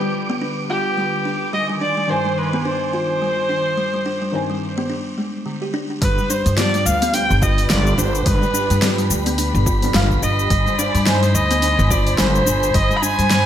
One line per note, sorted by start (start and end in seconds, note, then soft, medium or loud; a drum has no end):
0.00 1.49 D3 medium
0.00 1.51 F3 medium
0.00 1.49 G3 medium
0.00 1.51 G3 medium
0.00 0.28 G3 medium
0.00 1.52 B3 medium
0.00 1.52 D4 medium
0.00 0.41 G4 medium
0.00 1.49 G4 medium
0.00 1.53 G4 medium
0.00 1.49 B4 medium
0.00 4.89 D6 medium
0.30 0.40 B3 medium
0.41 0.50 D4 medium
0.70 0.96 F4 medium
0.70 1.49 G4 medium
0.97 1.06 G3 medium
1.25 1.52 D4 medium
1.53 4.86 D#3 medium
1.53 1.68 G3 medium
1.53 1.66 D#5 loud
1.53 4.86 G#5 medium
1.53 4.86 C6 medium
1.69 1.80 G3 medium
1.81 1.96 D4 medium
1.81 2.11 D5 medium
1.97 2.04 G3 medium
2.07 4.30 G2 medium
2.07 4.30 D#3 medium
2.07 2.39 C5 medium
2.07 4.31 G#5 medium
2.25 2.52 G3 medium
2.38 2.65 B4 medium
2.53 2.64 B3 medium
2.65 2.75 D4 medium
2.65 4.86 C5 loud
2.93 3.20 F4 medium
3.22 3.31 G3 medium
3.49 3.76 D4 medium
3.77 3.92 G3 medium
3.94 4.04 G3 medium
4.06 4.20 D4 medium
4.22 4.28 G3 medium
4.31 4.88 G2 medium
4.31 4.89 D#3 medium
4.31 4.90 C4 medium
4.31 4.90 G#5 medium
4.50 4.76 G3 medium
4.78 4.88 B3 medium
4.90 4.99 D4 medium
5.18 5.33 G#3 medium
5.46 5.60 D3 medium
5.62 5.72 G4 medium
5.74 5.88 D4 medium
5.90 6.01 D4 medium
6.01 6.15 G1 loud
6.01 6.16 G3 medium
6.01 10.46 G3 medium
6.01 10.46 D4 medium
6.01 10.46 G4 medium
6.01 6.31 B4 loud
6.01 10.46 B4 loud
6.01 13.46 B5 medium
6.01 kick loud
6.01 open hi-hat medium
6.01 cabasa soft
6.18 6.29 G3 medium
6.18 cabasa soft
6.30 6.45 D4 medium
6.30 6.57 C5 medium
6.30 cabasa medium
6.46 6.83 G2 medium
6.46 6.53 G3 medium
6.46 open hi-hat soft
6.46 cabasa soft
6.56 8.78 F3 medium
6.56 8.79 G3 medium
6.56 8.79 B3 medium
6.56 8.80 D4 medium
6.56 8.80 G4 medium
6.56 6.87 D5 loud
6.56 snare loud
6.56 open hi-hat medium
6.56 cabasa soft
6.74 7.00 G3 medium
6.74 open hi-hat soft
6.74 cabasa soft
6.86 7.26 D2 medium
6.86 7.15 F5 loud
6.86 cabasa medium
7.02 7.13 B3 loud
7.02 open hi-hat soft
7.02 cabasa soft
7.14 7.23 D4 medium
7.14 7.44 G5 loud
7.14 open hi-hat medium
7.14 cabasa soft
7.30 7.67 G1 loud
7.30 cabasa soft
7.42 7.69 F4 medium
7.42 7.70 D#5 loud
7.42 kick loud
7.42 cabasa medium
7.58 open hi-hat soft
7.58 cabasa soft
7.70 7.94 G1 loud
7.70 7.79 G3 medium
7.70 8.00 D5 loud
7.70 snare loud
7.70 open hi-hat medium
7.70 cabasa soft
7.87 cabasa soft
7.98 8.22 G1 medium
7.98 8.25 D4 medium
7.98 8.28 C5 medium
7.98 cabasa medium
8.15 cabasa soft
8.26 8.40 G1 loud
8.26 8.40 G3 medium
8.26 8.82 B4 medium
8.26 kick loud
8.26 open hi-hat medium
8.26 cabasa soft
8.42 8.53 G3 medium
8.42 cabasa soft
8.54 8.69 D4 medium
8.54 cabasa medium
8.70 9.07 G2 medium
8.70 8.77 G3 medium
8.70 open hi-hat soft
8.70 cabasa soft
8.80 9.78 F3 medium
8.80 9.79 G3 medium
8.80 9.79 B3 medium
8.80 9.80 D4 medium
8.80 9.80 G4 medium
8.80 snare loud
8.80 open hi-hat medium
8.80 cabasa soft
8.98 9.25 G3 medium
8.98 open hi-hat soft
8.98 cabasa soft
9.10 9.50 D2 medium
9.10 cabasa medium
9.26 9.37 B3 loud
9.26 open hi-hat soft
9.26 cabasa soft
9.38 9.47 D4 medium
9.38 open hi-hat medium
9.38 cabasa soft
9.54 9.91 G1 loud
9.54 cabasa soft
9.66 9.93 F4 medium
9.66 kick loud
9.66 cabasa medium
9.80 10.48 F3 medium
9.80 10.48 G3 medium
9.80 10.49 B3 medium
9.80 10.49 D4 medium
9.80 open hi-hat soft
9.80 cabasa soft
9.84 10.50 G4 loud
9.94 10.18 G1 loud
9.94 10.04 G3 medium
9.94 10.07 F5 medium
9.94 snare loud
9.94 open hi-hat medium
9.94 cabasa soft
10.11 kick medium
10.11 cabasa soft
10.22 10.46 G1 medium
10.22 10.49 D4 medium
10.22 10.80 D#5 medium
10.22 cabasa medium
10.39 cabasa soft
10.50 10.64 G1 loud
10.50 10.65 G3 medium
10.50 13.46 C5 loud
10.50 13.46 G#5 medium
10.50 kick loud
10.50 open hi-hat medium
10.50 cabasa medium
10.67 10.77 G3 medium
10.67 cabasa soft
10.78 10.93 D4 medium
10.78 11.08 D5 medium
10.78 cabasa medium
10.95 11.31 G2 medium
10.95 11.01 G3 medium
10.95 open hi-hat soft
10.95 cabasa soft
11.05 13.27 D#4 medium
11.05 11.36 C5 loud
11.05 snare loud
11.05 open hi-hat medium
11.05 cabasa soft
11.09 13.29 G#5 loud
11.23 11.49 G3 medium
11.23 open hi-hat soft
11.23 cabasa soft
11.34 11.75 D2 medium
11.34 11.92 D#5 loud
11.34 cabasa medium
11.51 11.61 B3 loud
11.51 open hi-hat soft
11.51 cabasa soft
11.62 11.72 D4 medium
11.62 open hi-hat medium
11.62 cabasa soft
11.79 12.15 G1 loud
11.79 cabasa soft
11.90 12.17 F4 medium
11.90 12.18 D5 medium
11.90 kick loud
11.90 cabasa medium
12.07 open hi-hat soft
12.07 cabasa soft
12.18 12.43 G1 loud
12.18 12.28 G3 medium
12.18 12.76 C5 loud
12.18 snare loud
12.18 open hi-hat medium
12.18 cabasa soft
12.35 cabasa soft
12.46 12.70 G1 medium
12.46 12.73 D4 medium
12.46 cabasa medium
12.63 cabasa soft
12.74 12.88 G1 loud
12.74 12.89 G3 medium
12.74 12.98 D#5 loud
12.74 kick loud
12.74 open hi-hat medium
12.74 cabasa soft
12.91 13.01 G3 medium
12.91 cabasa soft
12.96 13.04 B5 medium
13.02 13.17 D4 medium
13.02 13.46 G#5 loud
13.02 cabasa medium
13.19 13.46 G2 medium
13.19 13.26 G3 medium
13.19 open hi-hat soft
13.19 cabasa soft
13.30 snare loud
13.30 open hi-hat medium
13.30 cabasa soft